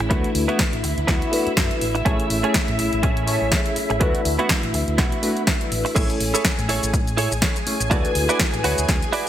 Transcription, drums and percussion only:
0.00 closed hi-hat soft
0.11 kick loud
0.11 closed hi-hat medium
0.24 closed hi-hat medium
0.35 open hi-hat loud
0.49 closed hi-hat soft
0.59 kick loud
0.59 snare loud
0.59 closed hi-hat medium
0.73 closed hi-hat medium
0.84 open hi-hat loud
0.98 closed hi-hat soft
1.08 kick loud
1.08 snare medium
1.08 closed hi-hat medium
1.22 closed hi-hat soft
1.33 open hi-hat loud
1.47 closed hi-hat soft
1.57 kick loud
1.57 snare loud
1.57 closed hi-hat medium
1.71 closed hi-hat soft
1.81 open hi-hat loud
1.95 closed hi-hat soft
2.06 kick loud
2.06 closed hi-hat medium
2.20 closed hi-hat medium
2.30 open hi-hat loud
2.44 closed hi-hat soft
2.54 kick loud
2.54 snare loud
2.54 closed hi-hat medium
2.68 closed hi-hat medium
2.79 open hi-hat loud
2.93 closed hi-hat soft
3.03 kick loud
3.03 closed hi-hat medium
3.17 closed hi-hat medium
3.27 open hi-hat loud
3.52 kick loud
3.52 snare loud
3.52 closed hi-hat medium
3.66 closed hi-hat medium
3.76 open hi-hat loud
3.90 closed hi-hat soft
4.01 kick loud
4.01 closed hi-hat medium
4.15 closed hi-hat medium
4.25 open hi-hat loud
4.39 closed hi-hat soft
4.49 kick loud
4.49 snare loud
4.49 closed hi-hat medium
4.63 closed hi-hat medium
4.74 open hi-hat loud
4.88 closed hi-hat soft
4.98 kick loud
4.98 snare medium
4.98 closed hi-hat medium
5.12 closed hi-hat medium
5.23 open hi-hat loud
5.37 closed hi-hat soft
5.47 kick loud
5.47 snare loud
5.47 closed hi-hat medium
5.61 closed hi-hat medium
5.72 open hi-hat loud
5.86 open hi-hat medium
5.96 kick loud
5.96 closed hi-hat medium
5.96 crash loud
5.96 shaker medium
6.10 closed hi-hat medium
6.10 shaker soft
6.20 open hi-hat loud
6.34 closed hi-hat soft
6.34 shaker medium
6.45 kick loud
6.45 snare loud
6.45 closed hi-hat medium
6.45 shaker medium
6.59 closed hi-hat medium
6.59 shaker soft
6.69 open hi-hat loud
6.83 closed hi-hat soft
6.83 shaker medium
6.94 kick loud
6.94 closed hi-hat medium
6.94 shaker medium
7.08 closed hi-hat medium
7.08 shaker soft
7.18 open hi-hat loud
7.32 shaker medium
7.42 kick loud
7.42 snare loud
7.42 closed hi-hat medium
7.42 shaker medium
7.56 closed hi-hat medium
7.56 shaker soft
7.67 open hi-hat loud
7.80 closed hi-hat soft
7.80 shaker medium
7.91 kick loud
7.91 closed hi-hat medium
7.91 shaker medium
8.05 closed hi-hat medium
8.05 shaker soft
8.15 open hi-hat loud
8.29 closed hi-hat soft
8.29 shaker medium
8.40 kick loud
8.40 snare loud
8.40 closed hi-hat medium
8.40 shaker medium
8.54 closed hi-hat medium
8.54 shaker soft
8.64 open hi-hat loud
8.78 closed hi-hat soft
8.78 shaker medium
8.89 kick loud
8.89 snare medium
8.89 closed hi-hat medium
8.89 shaker medium
9.02 closed hi-hat medium
9.02 shaker soft
9.13 open hi-hat loud

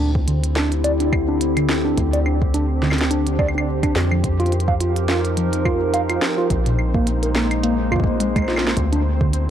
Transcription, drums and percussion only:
0.15 kick loud
0.28 closed hi-hat medium
0.44 closed hi-hat medium
0.56 snare loud
0.72 closed hi-hat soft
0.84 closed hi-hat medium
1.00 closed hi-hat medium
1.13 kick loud
1.13 claves medium
1.41 closed hi-hat medium
1.57 closed hi-hat medium
1.57 claves medium
1.69 snare loud
1.97 kick medium
1.97 closed hi-hat medium
2.13 closed hi-hat medium
2.26 claves soft
2.42 kick loud
2.54 closed hi-hat medium
2.82 snare medium
2.90 snare medium
2.90 claves medium
2.98 snare medium
2.98 closed hi-hat soft
3.11 closed hi-hat medium
3.27 closed hi-hat medium
3.39 kick loud
3.39 claves soft
3.48 claves soft
3.58 claves medium
3.83 kick loud
3.83 closed hi-hat medium
3.83 claves medium
3.96 snare loud
4.11 claves medium
4.24 kick medium
4.24 closed hi-hat medium
4.40 closed hi-hat soft
4.46 closed hi-hat soft
4.52 closed hi-hat soft
4.60 closed hi-hat soft
4.68 kick loud
4.81 closed hi-hat medium
4.96 closed hi-hat medium
5.09 snare loud
5.25 closed hi-hat soft
5.37 closed hi-hat medium
5.53 closed hi-hat medium
5.65 kick loud
5.65 claves medium
5.94 closed hi-hat medium
6.10 closed hi-hat medium
6.10 claves medium
6.22 snare loud
6.50 kick medium
6.50 closed hi-hat medium
6.66 closed hi-hat medium
6.79 claves soft
6.94 kick loud
7.07 closed hi-hat medium
7.23 closed hi-hat soft
7.35 snare loud
7.35 claves soft
7.51 closed hi-hat soft
7.51 claves soft
7.64 closed hi-hat medium
7.92 kick medium
7.92 claves medium
7.96 kick medium
8.00 kick medium
8.04 kick medium
8.20 closed hi-hat medium
8.36 kick loud
8.36 closed hi-hat soft
8.36 claves medium
8.38 claves soft
8.42 claves soft
8.44 claves soft
8.46 snare medium
8.46 claves soft
8.56 snare medium
8.56 claves soft
8.67 snare medium
8.77 kick medium
8.77 closed hi-hat medium
8.93 closed hi-hat soft
9.21 kick loud
9.33 closed hi-hat medium

